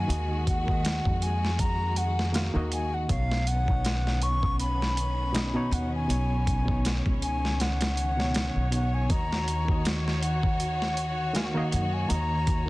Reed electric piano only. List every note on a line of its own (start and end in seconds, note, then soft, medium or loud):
0.00 0.07 D#3 loud
0.00 0.08 A#3 loud
0.00 0.09 F#4 medium
0.00 0.10 D#5 loud
0.00 2.35 F5 loud
0.07 0.62 D#3 medium
0.07 0.62 A#3 medium
0.07 0.63 F#4 medium
0.07 0.63 D#5 medium
0.64 2.29 D#3 medium
0.64 2.30 A#3 medium
0.68 2.31 F#4 medium
0.68 2.32 D#5 medium
2.32 2.49 D#3 loud
2.32 2.50 A#3 medium
2.32 2.50 F#4 medium
2.32 2.51 F5 loud
2.54 3.05 D#3 loud
2.54 3.05 A#3 medium
2.54 3.06 F#4 loud
2.54 3.06 D#5 loud
3.08 3.62 B2 medium
3.08 3.63 B3 medium
3.08 3.63 D#4 medium
3.08 3.64 C#5 medium
3.65 5.30 B2 medium
3.65 5.31 B3 medium
3.69 5.32 D#4 medium
3.69 5.32 C#5 medium
5.32 5.49 B2 loud
5.32 5.50 B3 medium
5.32 5.50 D#4 medium
5.32 5.51 D#5 loud
5.54 6.05 B2 loud
5.54 6.05 B3 loud
5.54 6.06 D#4 loud
5.54 6.06 C#5 loud
6.08 6.62 B2 medium
6.08 6.63 B3 medium
6.08 6.63 D#4 medium
6.08 6.64 C#5 medium
6.65 8.12 B2 medium
6.65 8.14 B3 medium
6.70 8.15 D#4 medium
6.70 8.16 C#5 medium
8.17 8.67 B2 medium
8.17 8.68 B3 medium
8.17 8.68 D#4 medium
8.17 8.69 C#5 loud
8.71 8.89 B2 medium
8.71 8.90 B3 medium
8.71 8.90 D#4 medium
8.71 8.91 C#5 medium
9.09 9.63 D#3 medium
9.09 9.63 A#3 medium
9.09 9.64 F#4 medium
9.09 9.64 D#5 medium
9.65 11.30 D#3 medium
9.65 11.31 A#3 medium
9.69 11.32 F#4 medium
9.69 11.33 D#5 medium
11.34 11.50 D#3 loud
11.34 11.51 A#3 medium
11.34 11.51 F#4 medium
11.34 11.52 F5 loud
11.54 12.05 D#3 loud
11.54 12.05 A#3 loud
11.54 12.06 F#4 loud
11.54 12.06 D#5 loud
12.08 12.62 D#3 medium
12.08 12.62 A#3 medium
12.08 12.63 F#4 medium
12.08 12.63 D#5 medium
12.66 12.70 D#3 medium